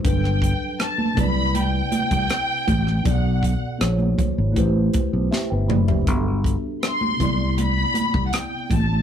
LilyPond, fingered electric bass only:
\new Staff \with { instrumentName = "Fingered electric bass" } { \clef bass \time 4/4 \key c \lydian \tempo 4 = 80 g,,8. r8. c,4 r16 c,16 r8 a,,8 | b,,8. r16 bes,,8 r16 aes,,16 a,,8 r16 b,,16 r16 g,,16 fis,,8 | g,,8. r8. c,4 r16 c,16 r8 a,,8 | }